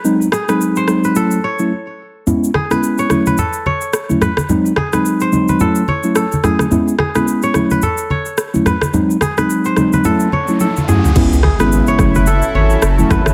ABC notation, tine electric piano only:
X:1
M:4/4
L:1/16
Q:"Swing 16ths" 1/4=108
K:F#dor
V:1 name="Tine electric piano"
[F,G,^B,D]2 z [F,G,B,D]3 [F,G,B,D]2 [F,A,CE]2 z [F,A,CE] z4 | [G,B,CE]2 z [G,B,CE]3 [F,A,CE]2 z4 z [F,A,CE] z2 | [F,G,^B,D]2 z [F,G,B,D]3 [F,G,B,D]2 [F,A,CE]2 z [F,A,CE] z2 [F,A,CE]2 | [G,B,CE]2 z [G,B,CE]3 [F,A,CE]2 z4 z [F,A,CE] z2 |
[F,G,^B,D]2 z [F,G,B,D]3 [F,G,B,D]2 [F,A,CE]2 z [F,A,CE] z2 [F,A,CE]2 | [G,B,CE]2 z [G,B,CE]3 [F,A,CE]2 z4 z [F,A,CE] z2 |]